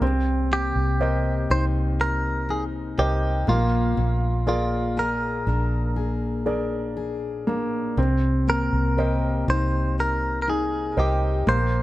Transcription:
0.00 0.72 C2 medium
0.00 3.58 C3 medium
0.00 0.12 A#3 soft
0.00 3.44 C4 medium
0.00 0.12 D4 soft
0.00 0.12 G#4 soft
0.51 4.01 A#3 soft
0.51 1.51 G4 medium
0.76 1.46 C2 medium
1.00 2.00 G4 soft
1.00 1.97 A#4 soft
1.00 1.97 C5 soft
1.00 1.97 D#5 soft
1.50 2.94 C2 medium
1.50 2.48 D#4 soft
1.50 1.65 C5 medium
2.01 2.51 A#4 medium
2.49 3.57 D#4 soft
2.49 2.64 G#4 medium
2.98 3.44 C2 medium
2.98 3.57 G4 medium
2.98 3.49 G4 medium
2.98 3.46 A#4 soft
2.98 3.47 C5 soft
2.98 3.47 D#5 soft
3.47 3.94 A#1 medium
3.47 3.96 A#2 medium
3.47 7.43 A#3 medium
3.47 4.47 F4 medium
3.97 5.43 A#1 medium
3.97 7.98 A#2 medium
4.47 8.08 A#3 soft
4.47 4.99 F4 soft
4.47 5.43 G#4 soft
4.47 5.44 A#4 soft
4.47 5.44 D5 soft
4.97 5.95 G#4 soft
4.97 5.93 A#4 medium
5.47 7.94 A#1 medium
5.47 6.45 D4 soft
5.96 6.95 G#4 soft
6.46 7.46 D4 soft
6.46 7.44 G#4 soft
6.46 7.44 A#4 soft
6.46 7.44 D5 soft
6.97 8.08 G#4 soft
7.47 7.96 A#3 soft
7.47 8.08 D4 soft
7.97 8.69 C2 medium
7.97 11.56 C3 medium
7.97 11.43 C4 soft
8.47 11.83 A#3 soft
8.47 9.45 A#4 medium
8.73 9.44 C2 medium
8.97 9.98 G4 soft
8.97 9.95 A#4 soft
8.97 9.95 C5 soft
8.97 9.95 D#5 soft
9.48 10.93 C2 medium
9.48 10.46 D#4 soft
9.48 9.95 C5 medium
10.00 10.39 A#4 medium
10.42 10.48 A#4 soft
10.48 11.56 D#4 soft
10.48 10.99 G#4 medium
10.97 11.43 C2 medium
10.97 11.56 G4 soft
10.97 11.49 G4 medium
10.97 11.45 A#4 soft
10.97 11.45 C5 soft
10.97 11.45 D#5 soft
11.47 11.83 A#1 medium
11.47 11.83 A#2 medium
11.47 11.83 A#3 medium
11.47 11.83 C5 medium

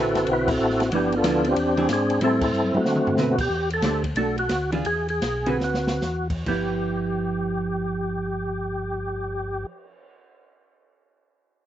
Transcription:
0.00 0.44 D3 soft
0.00 0.44 C4 medium
0.00 0.50 C4 medium
0.00 0.25 E4 medium
0.00 0.30 F#4 medium
0.00 0.44 F#4 medium
0.00 0.30 A4 medium
0.00 0.44 B4 medium
0.06 0.16 A1 medium
0.15 0.26 F#1 medium
0.15 snare soft
0.15 ride medium
0.27 0.58 B1 medium
0.27 ride medium
0.31 0.90 E4 medium
0.31 0.49 F#4 medium
0.31 0.49 B4 loud
0.48 0.90 C4 medium
0.48 0.84 F#4 medium
0.48 kick medium
0.48 crash medium
0.52 0.83 A4 medium
0.59 0.91 A1 medium
0.59 hi-hat pedal soft
0.70 snare soft
0.80 snare soft
0.80 ride soft
0.85 0.93 F#4 medium
0.91 1.23 G1 medium
0.91 1.10 F3 medium
0.91 1.11 B3 medium
0.91 1.54 B3 medium
0.91 1.15 D4 medium
0.91 1.11 E4 medium
0.91 ride medium
0.96 1.15 G4 medium
1.12 1.47 D4 medium
1.12 1.55 F4 medium
1.12 ride soft
1.18 1.48 A4 medium
1.23 1.55 D2 medium
1.23 1.43 F3 medium
1.23 1.43 B3 medium
1.23 1.43 E4 medium
1.23 snare medium
1.23 hi-hat pedal medium
1.23 ride medium
1.44 1.92 C4 medium
1.44 1.92 D4 medium
1.44 ride soft
1.49 1.88 G4 medium
1.56 1.88 E2 medium
1.56 ride medium
1.77 1.87 E3 medium
1.77 1.88 C4 medium
1.77 1.88 D4 medium
1.77 1.88 G#4 medium
1.77 ride soft
1.88 2.20 G#2 medium
1.88 snare medium
1.88 hi-hat pedal medium
1.88 ride medium
1.93 2.21 C4 medium
1.93 2.21 D4 medium
1.93 2.21 G#4 medium
2.10 ride soft
2.20 2.52 A2 medium
2.20 2.40 G3 medium
2.20 2.40 C4 medium
2.20 2.43 C4 medium
2.20 2.40 E4 medium
2.20 2.42 E4 medium
2.20 ride medium
2.25 2.43 A4 loud
2.41 2.75 C4 medium
2.41 2.83 E4 medium
2.41 2.73 A4 medium
2.41 kick medium
2.41 crash medium
2.52 2.72 G2 medium
2.52 hi-hat pedal medium
2.63 high tom soft
2.73 2.79 G2 soft
2.73 3.36 A3 medium
2.73 3.36 C4 medium
2.73 3.16 F#4 medium
2.73 high tom medium
2.84 3.16 D3 medium
2.84 snare medium
2.96 mid tom medium
3.07 floor tom medium
3.17 3.49 B2 medium
3.17 3.37 D3 medium
3.17 3.37 C4 medium
3.17 3.37 F#4 medium
3.17 3.37 B4 medium
3.17 snare medium
3.17 hi-hat pedal medium
3.32 3.40 F#4 medium
3.38 3.70 G4 loud
3.38 kick medium
3.38 crash medium
3.50 3.81 E2 medium
3.70 4.03 A4 loud
3.70 ride soft
3.82 4.14 D2 medium
3.82 4.02 A3 medium
3.82 4.03 D4 medium
3.82 4.03 G4 medium
3.82 4.03 C5 medium
3.82 snare medium
3.82 hi-hat pedal medium
3.82 ride medium
4.04 kick medium
4.04 ride medium
4.15 4.48 B1 medium
4.15 4.36 A3 medium
4.15 4.36 D4 medium
4.15 4.36 F#4 medium
4.15 4.36 A4 medium
4.15 ride medium
4.38 4.71 F#4 loud
4.38 ride soft
4.49 4.84 D2 medium
4.49 snare medium
4.49 hi-hat pedal medium
4.49 ride medium
4.72 4.84 E3 medium
4.72 4.84 D4 medium
4.72 4.84 F4 medium
4.72 4.84 G#4 medium
4.72 ride soft
4.85 5.21 E2 medium
4.85 5.07 G#4 loud
4.85 ride medium
5.08 5.58 G#4 medium
5.08 ride soft
5.22 5.59 B1 medium
5.22 snare medium
5.22 hi-hat pedal medium
5.22 ride medium
5.46 5.99 D3 medium
5.46 5.99 C4 medium
5.46 5.99 F#4 medium
5.46 6.00 B4 medium
5.46 ride soft
5.60 6.00 D2 medium
5.60 snare soft
5.64 6.28 F#4 medium
5.74 snare medium
5.87 snare medium
6.01 6.45 E2 medium
6.01 snare soft
6.01 hi-hat pedal medium
6.30 kick medium
6.30 crash medium
6.46 9.65 G1 medium
6.46 9.69 F3 medium
6.46 9.70 B3 medium
6.46 9.72 E4 medium
6.46 9.66 G4 medium
6.46 kick soft
6.46 crash medium
6.76 cymbal swell soft

